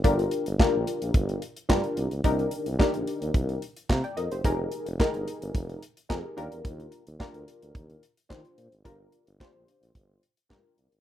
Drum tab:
HH |xxxx--xxxxxx-xxx|xxxx-xxxxxxx-xxx|x-xx-xxxxxxx--xx|xxxx-xxxxxxx-xxx|
CP |----x-------x---|----x-------x---|----x-------x---|----x-------x---|
SD |----o-------o---|----o-------o---|----o-------o---|----o-------o---|
BD |o---o---o---o---|o---o---o---o---|o---o---o---o---|o---o---o---o---|

HH |x-xx--xxx-xx--xx|
CP |----x-------x---|
SD |----o-------o---|
BD |o---o---o---o---|